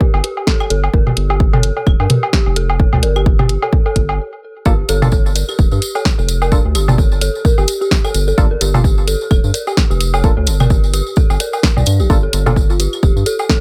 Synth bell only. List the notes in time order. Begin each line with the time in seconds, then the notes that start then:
0.01 G4
0.24 G4
0.47 A4
0.70 A4
0.93 A#4
1.07 G4
1.30 G4
1.53 A4
1.77 A4
2.00 A#4
2.10 G4
2.33 G4
2.56 A4
2.80 A4
3.03 A#4
3.16 G4
3.39 G4
3.63 A4
3.86 A4
4.66 G4
4.89 A4
5.12 A4
5.36 A#4
5.49 G4
5.72 G4
5.95 A4
6.18 A4
6.42 A#4
6.52 G4
6.75 G4
6.98 A4
7.22 A4
7.45 A#4
7.58 G4
7.81 G4
8.04 A4
8.28 A4
8.51 A#4
8.61 G4
8.84 G4
9.07 A4
9.31 A4
9.54 A#4
9.67 G4
9.90 G4
10.14 A4
10.37 A4
10.60 A#4
10.70 G4
10.94 G4
11.17 A4
11.40 A#4
11.77 D5
12.00 G4
12.23 A4
12.46 A4
12.70 F4
12.80 G4
13.03 G4
13.26 A4
13.50 A4